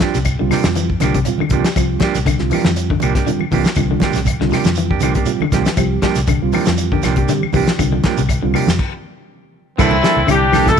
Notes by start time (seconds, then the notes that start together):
Already playing: D3 G3 C4 F4
0.00 F3 D4 G4, muted clean electric guitar stroke, kick, snare, closed hi-hat, high conga, shekere
0.14 C2 C3, snare, closed hi-hat, shekere
0.25 kick, closed hi-hat, claves, shekere
0.39 C2 D3 G3 C4 F4
0.51 C3 F3 A#3 D4 G4, snare, open hi-hat, low conga, claves, shekere
0.64 F2, snare, closed hi-hat, high conga, shekere
0.75 E3, closed hi-hat, shekere
0.90 kick
1.00 C2 D3 F3 A#3 D4 G4, snare, closed hi-hat, high conga, claves, shekere
1.14 C3, kick, closed hi-hat, shekere
1.25 G3 C4 F4, closed hi-hat, low conga, shekere
1.38 D3, muted fingered electric bass stroke, high conga, claves
1.49 C2 F3 G3 A#3 C4 D4 F4, kick, closed hi-hat, low conga, shekere
1.54 G4
1.64 G3, snare, closed hi-hat, shekere
1.76 C2 F3 G3 C4 F4, kick, closed hi-hat, claves, shekere
2.00 F3 G3 A#3 D4, kick, snare, closed hi-hat, high conga, shekere
2.04 G4
2.15 C2, snare, closed hi-hat, shekere
2.25 D3, kick, closed hi-hat, low conga, claves, shekere
2.38 C2 G3 C4 F4, snare
2.50 E3 F3 A#3, open hi-hat, low conga, claves, shekere
2.54 D4 G4
2.64 F2 E3, snare, closed hi-hat, high conga, shekere
2.76 closed hi-hat, shekere
2.90 D3, kick
3.00 C2 F3 A#3 D4 G4, closed hi-hat, high conga, claves, shekere
3.15 C3 A#3 D4 G4, kick, snare, closed hi-hat, shekere
3.26 D3 G3 C4 F4, closed hi-hat, low conga, shekere
3.40 muted fingered electric bass stroke, high conga, claves
3.51 C2 E3 F3 G3 A#3 C4 D4 F4 G4, kick, open hi-hat, low conga, shekere
3.64 snare, closed hi-hat, high conga, shekere
3.75 C2 D3 G3 C4 F4, kick, closed hi-hat, claves, shekere
3.88 D3, high conga
4.00 F3 A#3 D4 G4, kick, snare, closed hi-hat, high conga, shekere
4.13 C2 C3, snare, closed hi-hat, shekere
4.25 kick, closed hi-hat, high conga, low conga, claves, shekere
4.40 C2 D3 G3 C4 F4, snare
4.49 C3 F3 A#3 D4, snare, open hi-hat, low conga, shekere
4.54 G4, claves
4.64 F2, snare, closed hi-hat, high conga, shekere
4.75 E3, closed hi-hat, shekere
4.91 A#3 D4 G4, kick
5.00 C2 D3 F3 A#3 D4, closed hi-hat, high conga, claves, shekere
5.04 G4
5.14 C3 A#3 D4 G4, kick, closed hi-hat, shekere
5.26 G3 C4 F4, closed hi-hat, shekere
5.40 D3, muted fingered electric bass stroke, high conga, claves
5.51 C2 F3 G3 A#3 C4 D4 F4 G4, kick, snare, closed hi-hat, low conga, shekere
5.65 E3, snare, closed hi-hat, shekere
5.77 C2 F3 G3 C4 G4, kick, closed hi-hat, claves, shekere
6.02 F3 G3 A#3 D4 G4, kick, snare, closed hi-hat, high conga, shekere
6.15 C2, snare, closed hi-hat, shekere
6.27 D3, kick, closed hi-hat, high conga, low conga, claves, shekere
6.42 C2 G3 C4 F4
6.52 E3 F3 A#3 D4 G4, open hi-hat, low conga, claves, shekere
6.66 F2 E3, snare, closed hi-hat, high conga, shekere
6.77 closed hi-hat, shekere
6.92 D3 A#3 D4 G4, kick
7.03 C2 F3 A#3 D4 G4, snare, closed hi-hat, high conga, claves, shekere
7.16 C3 A#3 D4 G4, kick, closed hi-hat, shekere
7.28 D3 G3 C4 G4, snare, closed hi-hat, shekere
7.41 muted fingered electric bass stroke, high conga, claves
7.53 C2 E3 F3 G3 A#3 C4 D4 G4, kick, open hi-hat, low conga, shekere
7.67 snare, closed hi-hat, high conga, shekere
7.78 C2 D3 G3 C4 F4, kick, closed hi-hat, claves, shekere
7.92 D3, high conga
8.04 F3 A#3 D4 G4, kick, snare, closed hi-hat, high conga, shekere
8.17 C2 C3, closed hi-hat, shekere
8.29 kick, closed hi-hat, claves, shekere
8.42 C2 D3 G3 C4 F4
8.54 C3 F3 A#3 D4 G4, open hi-hat, low conga, claves, shekere
8.67 F2, snare, closed hi-hat, high conga, shekere
8.79 kick, crash
9.78 C2 E3 G3 A#3 C4 D4 E4 A4, kick, crash, claves, shekere
9.91 high conga
10.03 E3 G3 A#3 D4 A4, snare, closed hi-hat, shekere
10.16 C2, high conga
10.27 C2 D3 G3 C4 E4 G4, closed hi-hat, claves, shekere
10.33 D4
10.52 E3 G3 A#3 C4 D4 E4 A4, snare, open hi-hat, high conga, low conga, claves, shekere
10.66 C3 E3 A4, kick, snare, closed hi-hat
10.72 E4